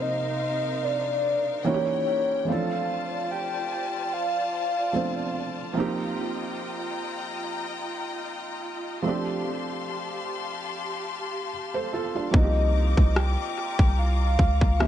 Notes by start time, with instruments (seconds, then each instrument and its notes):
Already playing: felt piano C3 F3 A#3 C4 D#4 G4, string section C3 D#4 A#4 C5 F5
0.02 soft synth lead D#5
0.84 soft synth lead D5
1.64 felt piano E3 A#3 C#4 D#4 F#4, string section E3 C#5 G5, soft synth lead C#5
1.74 felt piano G4
2.45 felt piano E3 A3 C4, string section F4 C5 D5 A5
2.49 felt piano F3 D4 A4, soft synth lead F5
3.31 soft synth lead G5
4.13 soft synth lead F5
4.93 felt piano F3 A3 C4 D4 C5
5.74 felt piano F3 A#3 C4, string section D#5 G5 A#5
5.78 felt piano D#4 G4
9.02 felt piano F3 A3 C4, string section G4 F5 A5 C6
9.07 felt piano D4 G4
11.74 felt piano A4 C5
11.93 felt piano F4 A4
12.15 felt piano D4 F4
12.31 808-style bass C2, felt piano F3 A#3 C4, string section F4 D#5 A#5 D6, kick
12.36 felt piano D#4 F#4, soft synth lead D#5
12.44 felt piano G4
12.97 808-style bass C2, kick
13.16 soft synth lead G5, cross-stick
13.79 808-style bass C2, kick
13.99 soft synth lead F5
14.39 808-style bass C#2, kick
14.61 kick
14.79 felt piano D#3 E3 A#3 C#4 G4, string section G4 E5 C#6, soft synth lead E5, cross-stick